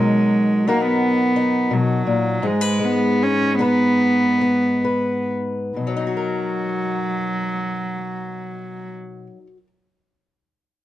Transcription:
Already playing: B2 G#3 D#4 F#4 A#4
0.00 F#3
0.67 A#3 D#4 F#4 A#4
0.87 B3
1.36 D#4
1.71 B2
1.75 F#3
2.07 A#2
2.42 G#2 G#4
2.46 G#3
2.61 B4
2.79 G#3
2.85 B3
3.23 C#4
3.59 B3 D#4 B4
4.41 B3
4.85 B4
5.76 B2 F#3
5.87 F#3
5.97 D#4
6.07 F#4
6.17 A#4

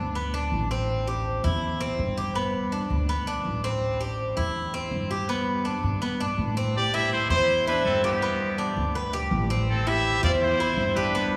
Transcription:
Already playing: D2 D4
0.15 B3
0.34 D4
0.52 A1
0.71 C4
1.07 G4
1.44 E2 E4
1.81 C4
1.99 G2
2.17 G4
2.35 B3
2.72 D4
2.90 D2
3.09 B3
3.27 D4
3.45 A1
3.64 C4
4.01 G4
4.37 E2 E4
4.74 C4
4.91 G2
5.11 G4
5.29 B3
5.65 D4
5.83 G2
6.02 B3
6.20 D4
6.38 A2
6.57 C4
6.76 G4 D5
6.94 E4 G4 E5
7.13 E4 C5
7.29 E2 E4 C5
7.67 D4 E4 B4
7.85 G2 C4 A4
8.04 B3 G4
8.22 B3
8.58 D4
8.77 D2
8.95 B4
9.13 G4
9.31 A1
9.50 C4
9.70 C4 A4
9.87 E4 G4 E5
10.23 E2 F4 C5 D5
10.42 E4 C5
10.60 E4
10.77 G2
10.95 D4 G4 B4
11.15 B3

